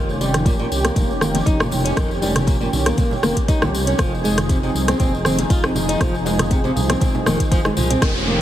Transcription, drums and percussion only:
0.09 tambourine soft
0.21 tambourine medium
0.34 cross-stick medium
0.34 closed hi-hat medium
0.34 tambourine soft
0.34 high conga medium
0.46 kick loud
0.46 closed hi-hat soft
0.46 tambourine medium
0.59 tambourine soft
0.72 tambourine medium
0.85 cross-stick medium
0.85 closed hi-hat medium
0.85 tambourine soft
0.85 low bongo medium
0.96 kick loud
0.96 closed hi-hat soft
0.96 tambourine medium
0.96 low bongo medium
0.96 low conga loud
1.11 tambourine soft
1.21 cross-stick medium
1.21 tambourine medium
1.21 high conga loud
1.35 closed hi-hat medium
1.35 tambourine soft
1.35 low bongo medium
1.35 high conga medium
1.46 kick loud
1.46 closed hi-hat soft
1.46 tambourine soft
1.60 cross-stick medium
1.60 tambourine soft
1.72 tambourine loud
1.72 high conga medium
1.72 low conga loud
1.85 closed hi-hat medium
1.85 tambourine soft
1.97 kick loud
1.97 cross-stick medium
1.97 closed hi-hat soft
1.97 mid tom medium
1.97 tambourine soft
1.97 low bongo medium
2.11 tambourine soft
2.22 tambourine medium
2.22 high bongo medium
2.36 cross-stick medium
2.36 closed hi-hat soft
2.36 tambourine soft
2.36 high conga medium
2.36 low conga medium
2.47 kick loud
2.47 closed hi-hat soft
2.47 tambourine soft
2.61 tambourine soft
2.73 tambourine medium
2.73 low conga medium
2.86 cross-stick medium
2.86 closed hi-hat medium
2.86 low bongo medium
2.97 kick loud
2.97 closed hi-hat soft
2.97 tambourine soft
2.97 high conga medium
2.97 low conga loud
3.11 tambourine soft
3.11 low conga loud
3.23 cross-stick medium
3.23 tambourine medium
3.23 low bongo medium
3.23 high conga medium
3.37 kick medium
3.37 closed hi-hat medium
3.37 tambourine soft
3.48 kick loud
3.48 closed hi-hat soft
3.48 tambourine soft
3.62 cross-stick medium
3.62 tambourine soft
3.62 high bongo medium
3.62 high conga loud
3.74 tambourine medium
3.74 high conga medium
3.87 closed hi-hat medium
3.87 tambourine soft
3.98 kick loud
3.98 cross-stick medium
3.98 closed hi-hat soft
3.98 mid tom medium
3.98 tambourine soft
3.98 low bongo medium
4.14 tambourine soft
4.25 tambourine medium
4.38 cross-stick medium
4.38 closed hi-hat medium
4.38 tambourine soft
4.38 high conga medium
4.49 kick loud
4.49 closed hi-hat soft
4.49 tambourine medium
4.64 tambourine soft
4.76 tambourine medium
4.88 cross-stick medium
4.88 closed hi-hat medium
4.88 tambourine soft
4.88 low bongo medium
5.00 kick loud
5.00 closed hi-hat soft
5.00 tambourine medium
5.00 low bongo medium
5.00 low conga loud
5.15 tambourine soft
5.25 cross-stick medium
5.25 tambourine medium
5.25 high conga loud
5.39 closed hi-hat medium
5.39 tambourine soft
5.39 low bongo medium
5.39 high conga medium
5.50 kick loud
5.50 closed hi-hat soft
5.50 tambourine soft
5.64 cross-stick medium
5.64 tambourine soft
5.75 tambourine medium
5.75 high conga medium
5.75 low conga loud
5.89 closed hi-hat medium
5.89 tambourine soft
6.01 kick loud
6.01 cross-stick medium
6.01 closed hi-hat soft
6.01 mid tom medium
6.01 tambourine soft
6.01 low bongo medium
6.15 tambourine soft
6.26 tambourine medium
6.26 high bongo medium
6.38 cross-stick medium
6.38 closed hi-hat medium
6.38 tambourine soft
6.38 high conga medium
6.38 low conga medium
6.51 kick loud
6.51 closed hi-hat soft
6.51 tambourine soft
6.65 tambourine soft
6.76 tambourine medium
6.76 low conga medium
6.89 cross-stick medium
6.89 closed hi-hat medium
6.89 tambourine soft
6.89 low bongo medium
7.01 kick loud
7.01 closed hi-hat soft
7.01 high tom medium
7.01 tambourine medium
7.01 high conga medium
7.01 low conga loud
7.15 high tom medium
7.15 tambourine soft
7.15 low conga loud
7.26 cross-stick medium
7.26 mid tom medium
7.26 tambourine medium
7.26 low bongo medium
7.26 high conga loud
7.40 kick medium
7.40 closed hi-hat medium
7.40 mid tom medium
7.40 tambourine soft
7.51 kick loud
7.51 closed hi-hat soft
7.51 mid tom medium
7.51 tambourine soft
7.51 high conga medium
7.65 cross-stick medium
7.65 mid tom medium
7.65 tambourine soft
7.65 high bongo medium
7.65 high conga loud
7.77 mid tom loud
7.77 tambourine medium
7.77 high conga medium
7.91 closed hi-hat medium
7.91 mid tom medium
7.91 tambourine soft
8.02 kick loud
8.02 cross-stick medium
8.02 closed hi-hat soft
8.02 low bongo medium

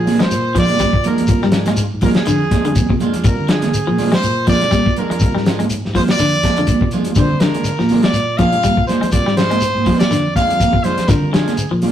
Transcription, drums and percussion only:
0.07 open hi-hat medium
0.07 high conga medium
0.07 low conga medium
0.07 shekere soft
0.20 snare medium
0.20 closed hi-hat medium
0.31 closed hi-hat medium
0.31 shekere medium
0.55 kick medium
0.55 closed hi-hat medium
0.55 high conga loud
0.55 shekere soft
0.68 closed hi-hat medium
0.68 high conga medium
0.79 kick medium
0.79 snare soft
0.79 closed hi-hat medium
0.79 high conga medium
0.79 shekere loud
0.93 kick medium
1.04 closed hi-hat medium
1.04 high conga medium
1.04 low conga medium
1.04 shekere soft
1.18 closed hi-hat medium
1.18 high conga medium
1.27 kick loud
1.27 closed hi-hat medium
1.27 shekere medium
1.42 snare soft
1.52 snare medium
1.52 closed hi-hat medium
1.52 shekere soft
1.66 snare soft
1.66 closed hi-hat medium
1.66 high conga medium
1.66 low conga medium
1.76 closed hi-hat medium
1.76 shekere loud
2.01 kick medium
2.01 open hi-hat medium
2.01 high conga medium
2.01 low conga medium
2.01 shekere soft
2.14 snare medium
2.14 closed hi-hat medium
2.25 snare soft
2.25 closed hi-hat medium
2.25 shekere medium
2.51 kick medium
2.51 snare soft
2.51 closed hi-hat medium
2.51 high conga loud
2.51 shekere soft
2.65 closed hi-hat medium
2.75 kick medium
2.75 closed hi-hat medium
2.75 high conga medium
2.75 shekere medium
2.89 kick medium
3.00 closed hi-hat medium
3.00 high conga medium
3.00 low conga medium
3.00 shekere soft
3.14 closed hi-hat medium
3.24 kick loud
3.24 closed hi-hat medium
3.24 shekere medium
3.48 snare medium
3.48 closed hi-hat medium
3.48 shekere soft
3.62 snare soft
3.62 closed hi-hat medium
3.62 high conga medium
3.62 low conga medium
3.74 closed hi-hat medium
3.74 shekere loud
3.88 high conga medium
3.98 open hi-hat medium
3.98 high conga medium
3.98 low conga medium
3.98 shekere soft
4.12 snare medium
4.12 closed hi-hat medium
4.23 closed hi-hat medium
4.23 shekere medium
4.47 kick medium
4.47 closed hi-hat medium
4.47 high conga loud
4.47 shekere soft
4.61 snare soft
4.61 closed hi-hat medium
4.71 kick medium
4.71 closed hi-hat medium
4.71 high conga medium
4.71 shekere medium
4.86 kick medium
4.96 closed hi-hat soft
4.96 low conga medium
4.96 shekere soft
5.11 closed hi-hat medium
5.20 kick medium
5.20 closed hi-hat medium
5.20 shekere medium
5.37 snare soft
5.45 snare medium
5.45 closed hi-hat medium
5.45 shekere soft
5.60 closed hi-hat medium
5.60 high conga medium
5.60 low conga medium
5.70 closed hi-hat medium
5.70 shekere medium
5.85 snare soft
5.95 kick medium
5.95 open hi-hat medium
5.95 high conga medium
5.95 low conga medium
5.95 shekere soft
6.08 snare medium
6.08 closed hi-hat medium
6.19 closed hi-hat medium
6.19 shekere medium
6.43 kick medium
6.43 snare soft
6.43 closed hi-hat medium
6.43 high conga loud
6.43 shekere soft
6.57 closed hi-hat medium
6.67 kick medium
6.67 closed hi-hat medium
6.67 high conga medium
6.67 shekere medium
6.81 kick medium
6.91 closed hi-hat medium
6.91 high conga medium
6.91 low conga medium
6.91 shekere soft
7.04 closed hi-hat medium
7.04 high conga medium
7.15 kick loud
7.15 closed hi-hat medium
7.15 shekere medium
7.40 snare medium
7.40 closed hi-hat medium
7.40 shekere soft
7.54 closed hi-hat medium
7.54 high conga medium
7.64 closed hi-hat medium
7.64 shekere medium
7.79 snare soft
7.79 high conga medium
7.89 open hi-hat medium
7.89 high conga medium
7.89 low conga medium
7.89 shekere soft
8.03 snare medium
8.03 closed hi-hat medium
8.13 closed hi-hat medium
8.13 shekere medium
8.38 kick medium
8.38 snare soft
8.38 closed hi-hat soft
8.38 high conga loud
8.38 shekere soft
8.52 closed hi-hat soft
8.63 kick medium
8.63 closed hi-hat medium
8.63 high conga medium
8.63 shekere medium
8.77 kick medium
8.87 snare soft
8.87 closed hi-hat medium
8.87 high conga medium
8.87 low conga medium
8.87 shekere soft
9.03 closed hi-hat medium
9.11 kick medium
9.11 closed hi-hat medium
9.11 shekere medium
9.27 snare soft
9.37 snare medium
9.37 closed hi-hat medium
9.37 shekere soft
9.51 closed hi-hat medium
9.51 high conga medium
9.61 closed hi-hat medium
9.61 shekere loud
9.77 high conga medium
9.86 kick medium
9.86 open hi-hat medium
9.86 high conga medium
9.86 low conga medium
9.86 shekere soft
10.00 snare medium
10.00 closed hi-hat medium
10.11 snare soft
10.11 closed hi-hat medium
10.11 shekere medium
10.36 kick medium
10.36 closed hi-hat medium
10.36 high conga loud
10.36 shekere soft
10.50 closed hi-hat medium
10.60 kick medium
10.60 closed hi-hat medium
10.60 high conga medium
10.60 shekere medium
10.73 kick medium
10.84 closed hi-hat medium
10.84 low conga medium
10.84 shekere soft
10.98 snare soft
10.98 closed hi-hat medium
11.08 kick loud
11.08 snare soft
11.08 closed hi-hat medium
11.08 shekere medium
11.34 snare medium
11.34 closed hi-hat medium
11.34 shekere soft
11.48 snare soft
11.48 closed hi-hat medium
11.48 high conga medium
11.57 closed hi-hat medium
11.57 shekere medium
11.82 open hi-hat medium
11.82 high conga medium
11.82 low conga medium
11.82 shekere soft

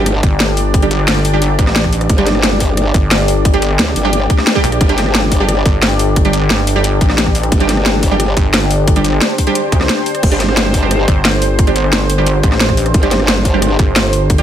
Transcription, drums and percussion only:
0.06 cross-stick medium
0.06 closed hi-hat loud
0.23 kick loud
0.23 closed hi-hat medium
0.40 snare loud
0.40 closed hi-hat medium
0.57 open hi-hat medium
0.74 kick loud
0.74 closed hi-hat medium
0.82 closed hi-hat soft
0.91 closed hi-hat medium
0.99 cross-stick soft
1.08 snare loud
1.08 closed hi-hat medium
1.25 open hi-hat medium
1.42 closed hi-hat loud
1.59 kick loud
1.59 closed hi-hat medium
1.67 cross-stick medium
1.67 snare soft
1.76 snare loud
1.76 closed hi-hat medium
1.84 kick medium
1.84 cross-stick soft
1.93 open hi-hat medium
2.01 cross-stick soft
2.01 closed hi-hat soft
2.09 kick loud
2.09 closed hi-hat medium
2.18 closed hi-hat soft
2.26 snare soft
2.26 closed hi-hat medium
2.35 cross-stick soft
2.43 snare loud
2.43 closed hi-hat medium
2.60 kick medium
2.60 open hi-hat medium
2.77 cross-stick soft
2.77 closed hi-hat medium
2.94 kick loud
2.94 closed hi-hat medium
3.11 snare loud
3.11 closed hi-hat medium
3.28 open hi-hat medium
3.45 kick loud
3.45 closed hi-hat medium
3.54 closed hi-hat soft
3.62 closed hi-hat medium
3.71 cross-stick soft
3.79 snare loud
3.79 closed hi-hat medium
3.96 open hi-hat medium
4.13 closed hi-hat medium
4.30 kick loud
4.30 closed hi-hat medium
4.38 cross-stick medium
4.38 snare soft
4.47 snare loud
4.47 closed hi-hat medium
4.55 kick medium
4.55 cross-stick soft
4.64 open hi-hat medium
4.72 cross-stick soft
4.72 closed hi-hat soft
4.81 kick loud
4.81 closed hi-hat medium
4.89 closed hi-hat soft
4.98 snare soft
4.98 closed hi-hat medium
5.06 cross-stick soft
5.15 snare loud
5.15 closed hi-hat medium
5.32 kick medium
5.32 open hi-hat medium
5.49 cross-stick soft
5.49 closed hi-hat medium
5.66 kick loud
5.66 closed hi-hat medium
5.82 snare loud
5.82 closed hi-hat medium
5.99 open hi-hat medium
6.16 kick loud
6.16 closed hi-hat loud
6.25 closed hi-hat soft
6.33 closed hi-hat medium
6.42 cross-stick soft
6.50 snare loud
6.50 closed hi-hat loud
6.67 open hi-hat medium
6.84 closed hi-hat medium
7.01 kick loud
7.01 closed hi-hat medium
7.10 cross-stick medium
7.10 snare soft
7.18 snare loud
7.18 closed hi-hat medium
7.26 kick medium
7.26 cross-stick soft
7.35 open hi-hat medium
7.43 cross-stick soft
7.43 closed hi-hat soft
7.52 kick loud
7.52 closed hi-hat medium
7.60 closed hi-hat soft
7.69 snare soft
7.69 closed hi-hat medium
7.77 cross-stick soft
7.86 snare loud
7.86 closed hi-hat loud
8.03 kick medium
8.03 open hi-hat medium
8.20 cross-stick soft
8.20 closed hi-hat medium
8.37 kick loud
8.37 closed hi-hat medium
8.54 snare loud
8.54 closed hi-hat medium
8.71 open hi-hat medium
8.88 kick loud
8.88 closed hi-hat medium
8.96 closed hi-hat soft
9.04 closed hi-hat medium
9.13 cross-stick soft
9.21 snare loud
9.21 closed hi-hat loud
9.38 kick medium
9.38 open hi-hat medium
9.47 closed hi-hat soft
9.55 closed hi-hat loud
9.72 kick loud
9.72 closed hi-hat medium
9.81 cross-stick medium
9.81 snare soft
9.89 snare loud
9.89 closed hi-hat medium
9.98 cross-stick soft
10.06 open hi-hat medium
10.15 cross-stick soft
10.15 closed hi-hat soft
10.23 kick loud
10.23 closed hi-hat loud
10.23 crash medium
10.32 closed hi-hat soft
10.40 snare soft
10.40 closed hi-hat medium
10.49 cross-stick soft
10.57 snare loud
10.57 closed hi-hat loud
10.74 kick medium
10.74 open hi-hat medium
10.91 cross-stick medium
10.91 closed hi-hat loud
11.08 kick loud
11.08 closed hi-hat medium
11.25 snare loud
11.25 closed hi-hat loud
11.42 open hi-hat medium
11.59 kick loud
11.59 closed hi-hat medium
11.67 closed hi-hat soft
11.76 closed hi-hat medium
11.84 cross-stick soft
11.93 snare loud
11.93 closed hi-hat loud
12.10 open hi-hat medium
12.27 closed hi-hat medium
12.43 kick loud
12.43 closed hi-hat medium
12.52 cross-stick medium
12.52 snare soft
12.60 snare loud
12.60 closed hi-hat medium
12.69 kick medium
12.69 cross-stick soft
12.77 open hi-hat medium
12.86 cross-stick soft
12.86 closed hi-hat soft
12.94 kick loud
12.94 closed hi-hat medium
13.03 closed hi-hat soft
13.11 snare soft
13.11 closed hi-hat medium
13.20 cross-stick soft
13.28 snare loud
13.28 closed hi-hat medium
13.45 kick medium
13.45 open hi-hat medium
13.62 cross-stick soft
13.62 closed hi-hat medium
13.79 kick loud
13.79 closed hi-hat medium
13.96 snare loud
13.96 closed hi-hat medium
14.13 open hi-hat medium
14.30 kick loud
14.30 closed hi-hat medium
14.38 closed hi-hat soft

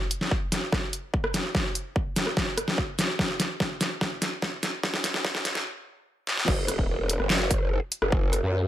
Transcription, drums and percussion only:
0.11 closed hi-hat medium
0.21 snare soft
0.31 kick medium
0.52 snare medium
0.52 closed hi-hat medium
0.72 kick loud
0.72 cross-stick soft
0.72 snare soft
0.93 closed hi-hat medium
1.14 kick loud
1.24 cross-stick medium
1.34 snare medium
1.34 closed hi-hat medium
1.55 kick medium
1.55 snare medium
1.75 closed hi-hat medium
1.96 kick loud
2.16 snare medium
2.16 closed hi-hat medium
2.27 cross-stick medium
2.37 kick loud
2.37 snare medium
2.58 cross-stick medium
2.58 closed hi-hat medium
2.68 snare medium
2.78 kick loud
2.99 snare medium
2.99 closed hi-hat medium
3.19 kick loud
3.19 snare medium
3.40 snare medium
3.40 closed hi-hat medium
3.60 kick loud
3.60 snare medium
3.81 snare medium
3.81 closed hi-hat medium
4.01 kick loud
4.01 snare medium
4.22 snare medium
4.22 closed hi-hat medium
4.42 kick loud
4.42 snare medium
4.63 snare medium
4.63 closed hi-hat medium
4.83 kick loud
4.83 snare medium
4.94 snare medium
5.04 snare loud
5.04 closed hi-hat medium
5.14 snare medium
5.25 kick loud
5.25 snare loud
5.35 snare medium
5.45 snare loud
5.45 closed hi-hat medium
5.55 snare medium
6.27 snare medium
6.38 snare medium
6.48 kick loud
6.48 crash loud
6.68 cross-stick medium
6.68 closed hi-hat medium
6.79 kick medium
7.09 closed hi-hat medium
7.20 cross-stick medium
7.30 snare loud
7.30 clap medium
7.51 kick loud
7.51 closed hi-hat medium
7.92 closed hi-hat medium
8.02 cross-stick medium
8.12 kick loud
8.33 cross-stick medium
8.33 closed hi-hat medium

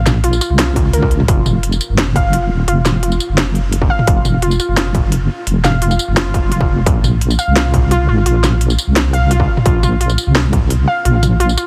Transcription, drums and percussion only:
0.06 snare medium
0.06 closed hi-hat soft
0.06 mid tom medium
0.06 tambourine soft
0.24 closed hi-hat medium
0.33 tambourine soft
0.41 closed hi-hat soft
0.41 tambourine medium
0.59 snare loud
0.59 closed hi-hat medium
0.76 kick medium
0.76 closed hi-hat soft
0.93 closed hi-hat medium
1.02 kick medium
1.11 closed hi-hat soft
1.20 mid tom medium
1.28 kick loud
1.28 closed hi-hat medium
1.46 mid tom medium
1.46 tambourine soft
1.63 closed hi-hat medium
1.72 tambourine soft
1.81 tambourine medium
1.98 snare loud
1.98 closed hi-hat medium
2.07 mid tom soft
2.16 kick medium
2.16 closed hi-hat soft
2.16 mid tom medium
2.33 closed hi-hat medium
2.68 closed hi-hat medium
2.85 snare medium
2.85 closed hi-hat soft
2.85 mid tom medium
2.85 tambourine soft
3.03 closed hi-hat medium
3.12 tambourine soft
3.20 tambourine medium
3.38 snare loud
3.38 closed hi-hat medium
3.55 closed hi-hat soft
3.72 closed hi-hat medium
3.82 kick medium
3.99 mid tom medium
4.07 kick loud
4.07 closed hi-hat medium
4.25 mid tom medium
4.25 tambourine soft
4.42 closed hi-hat medium
4.51 tambourine soft
4.60 tambourine medium
4.77 snare loud
4.77 closed hi-hat medium
4.86 mid tom soft
4.95 kick medium
4.95 closed hi-hat soft
4.95 mid tom medium
5.12 closed hi-hat medium
5.47 closed hi-hat medium
5.64 snare medium
5.64 closed hi-hat soft
5.64 mid tom medium
5.64 tambourine soft
5.82 closed hi-hat medium
5.91 tambourine soft
5.99 tambourine medium
6.17 snare loud
6.17 closed hi-hat medium
6.34 kick medium
6.34 closed hi-hat soft
6.52 closed hi-hat medium
6.61 kick medium
6.86 kick loud
6.86 closed hi-hat medium
6.86 mid tom medium
7.04 mid tom medium
7.04 tambourine soft
7.21 closed hi-hat medium
7.31 tambourine soft
7.39 tambourine medium
7.56 snare loud
7.56 closed hi-hat medium
7.65 mid tom soft
7.74 kick medium
7.74 closed hi-hat soft
7.74 mid tom medium
7.91 closed hi-hat medium
8.26 closed hi-hat medium
8.44 snare medium
8.44 closed hi-hat soft
8.44 mid tom medium
8.44 tambourine soft
8.61 closed hi-hat medium
8.70 tambourine soft
8.78 tambourine medium
8.96 snare loud
8.96 closed hi-hat medium
9.14 closed hi-hat soft
9.31 closed hi-hat medium
9.40 kick medium
9.57 mid tom medium
9.66 kick loud
9.66 closed hi-hat medium
9.83 mid tom medium
9.83 tambourine soft
10.01 closed hi-hat medium
10.10 tambourine soft
10.18 tambourine medium
10.35 snare loud
10.45 mid tom soft
10.53 kick medium
10.53 closed hi-hat soft
10.53 mid tom medium
10.70 closed hi-hat medium
11.05 closed hi-hat medium
11.23 closed hi-hat soft
11.23 mid tom medium
11.23 tambourine soft
11.40 closed hi-hat medium
11.49 tambourine soft
11.58 closed hi-hat soft
11.58 tambourine medium

